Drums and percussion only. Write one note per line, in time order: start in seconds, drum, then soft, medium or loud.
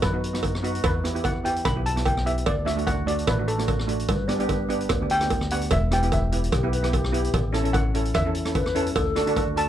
0.02 kick loud
0.02 cross-stick medium
0.02 closed hi-hat medium
0.02 cowbell medium
0.24 closed hi-hat medium
0.35 cross-stick medium
0.35 closed hi-hat medium
0.43 kick medium
0.43 closed hi-hat medium
0.43 cowbell medium
0.55 cross-stick medium
0.64 closed hi-hat medium
0.75 closed hi-hat medium
0.84 kick loud
0.84 closed hi-hat medium
0.84 cowbell loud
1.05 cross-stick medium
1.05 closed hi-hat medium
1.16 closed hi-hat medium
1.24 kick medium
1.24 closed hi-hat medium
1.24 cowbell medium
1.45 closed hi-hat medium
1.56 closed hi-hat medium
1.65 kick loud
1.65 cross-stick medium
1.65 closed hi-hat medium
1.65 cowbell loud
1.86 closed hi-hat medium
1.97 cross-stick medium
1.97 closed hi-hat medium
2.05 kick medium
2.05 closed hi-hat medium
2.05 cowbell medium
2.17 cross-stick medium
2.27 closed hi-hat medium
2.38 closed hi-hat medium
2.46 kick loud
2.46 closed hi-hat medium
2.46 cowbell loud
2.67 cross-stick medium
2.67 closed hi-hat medium
2.78 closed hi-hat medium
2.87 kick medium
2.87 closed hi-hat medium
2.87 cowbell medium
3.08 closed hi-hat medium
3.19 closed hi-hat medium
3.27 kick loud
3.27 cross-stick medium
3.27 closed hi-hat medium
3.27 cowbell medium
3.48 closed hi-hat medium
3.59 cross-stick medium
3.59 closed hi-hat medium
3.68 kick medium
3.68 closed hi-hat medium
3.68 cowbell medium
3.79 cross-stick medium
3.89 closed hi-hat medium
4.00 closed hi-hat medium
4.08 kick loud
4.08 closed hi-hat medium
4.08 cowbell medium
4.29 cross-stick medium
4.29 closed hi-hat medium
4.40 closed hi-hat medium
4.49 kick medium
4.49 closed hi-hat medium
4.49 cowbell medium
4.70 closed hi-hat medium
4.81 closed hi-hat medium
4.89 kick loud
4.89 cross-stick medium
4.89 closed hi-hat medium
4.89 cowbell medium
5.10 closed hi-hat medium
5.21 cross-stick medium
5.21 closed hi-hat medium
5.30 kick medium
5.30 closed hi-hat medium
5.30 cowbell medium
5.41 cross-stick medium
5.50 closed hi-hat medium
5.61 closed hi-hat medium
5.71 kick loud
5.71 closed hi-hat medium
5.71 cowbell medium
5.92 cross-stick medium
5.92 closed hi-hat medium
6.03 closed hi-hat medium
6.12 kick medium
6.12 closed hi-hat medium
6.12 cowbell medium
6.32 closed hi-hat medium
6.44 closed hi-hat medium
6.52 kick loud
6.52 cross-stick medium
6.52 closed hi-hat medium
6.52 cowbell medium
6.73 closed hi-hat medium
6.84 cross-stick medium
6.84 closed hi-hat medium
6.93 kick medium
6.93 closed hi-hat medium
6.93 cowbell medium
7.04 cross-stick medium
7.14 closed hi-hat medium
7.24 closed hi-hat medium
7.34 kick loud
7.34 closed hi-hat medium
7.34 cowbell medium
7.54 cross-stick medium
7.54 closed hi-hat medium
7.65 closed hi-hat medium
7.74 kick medium
7.74 closed hi-hat medium
7.74 cowbell medium
7.95 closed hi-hat medium
8.05 closed hi-hat medium
8.14 kick loud
8.14 cross-stick medium
8.14 closed hi-hat medium
8.14 cowbell medium
8.35 closed hi-hat medium
8.45 cross-stick medium
8.45 closed hi-hat medium
8.55 kick medium
8.55 closed hi-hat medium
8.55 cowbell medium
8.66 cross-stick medium
8.75 closed hi-hat medium
8.86 closed hi-hat medium
8.95 kick loud
8.95 closed hi-hat medium
8.95 cowbell loud
9.16 cross-stick medium
9.16 closed hi-hat medium
9.27 closed hi-hat medium
9.36 kick medium
9.36 closed hi-hat medium
9.36 cowbell medium
9.57 closed hi-hat medium